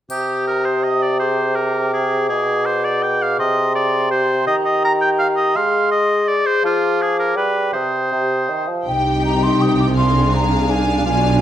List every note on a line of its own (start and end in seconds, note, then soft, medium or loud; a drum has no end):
0.10 2.31 C3 soft
0.10 0.45 G4 soft
0.10 1.23 G4 soft
0.10 1.23 D#6 soft
0.10 triangle soft
0.47 0.67 A#4 soft
0.65 0.85 C5 soft
0.83 1.04 D#5 soft
1.03 1.19 D5 soft
1.19 4.14 G#4 soft
1.19 1.57 C5 soft
1.19 3.41 D6 soft
1.56 1.93 A#4 soft
1.93 2.28 G#4 soft
2.29 3.38 B2 soft
2.29 2.67 G#4 soft
2.66 2.86 C5 medium
2.84 3.04 D5 soft
3.03 3.23 G5 medium
3.22 3.39 F5 soft
3.39 4.45 C3 soft
3.39 3.75 D#5 medium
3.39 4.47 C6 soft
3.75 4.10 D5 soft
4.11 5.58 G4 soft
4.11 4.46 C5 medium
4.47 5.53 D#3 soft
4.47 4.55 D#5 medium
4.47 5.58 A#5 soft
4.65 4.82 D#5 medium
4.85 4.92 A#5 medium
5.01 5.09 G5 medium
5.19 5.27 F5 medium
5.36 5.57 D#5 medium
5.55 6.35 G#3 soft
5.55 7.84 G#4 soft
5.55 5.91 F5 medium
5.55 6.37 C6 soft
5.91 6.30 D#5 medium
6.28 6.47 D5 medium
6.46 6.64 C5 medium
6.64 7.38 F3 soft
6.64 7.03 F4 medium
6.64 7.76 D6 soft
7.02 7.19 G#4 medium
7.19 7.36 A#4 medium
7.36 7.76 G3 soft
7.36 7.72 B4 soft
7.73 8.09 C3 soft
7.73 8.67 C5 soft
7.73 8.69 D#6 soft
8.12 8.50 C3 soft
8.12 8.66 G4 soft
8.49 8.70 D#3 soft
8.69 8.88 F3 soft
8.88 11.03 C2 soft
8.88 11.03 C3 soft
8.88 9.94 D#4 soft
8.88 9.94 G4 soft
8.88 9.94 G5 soft
8.88 9.23 G5 soft
9.25 9.45 A#5 soft
9.43 9.63 C6 soft
9.61 9.79 D#6 soft
9.80 9.86 D6 soft
9.97 11.41 D4 soft
9.97 11.03 G#4 soft
9.97 11.41 F5 soft
9.97 10.33 C6 medium
10.35 10.72 A#5 soft
10.70 11.07 G#5 soft
11.06 11.41 B1 soft
11.06 11.41 B2 soft
11.06 11.41 F4 soft
11.06 11.41 G#5 medium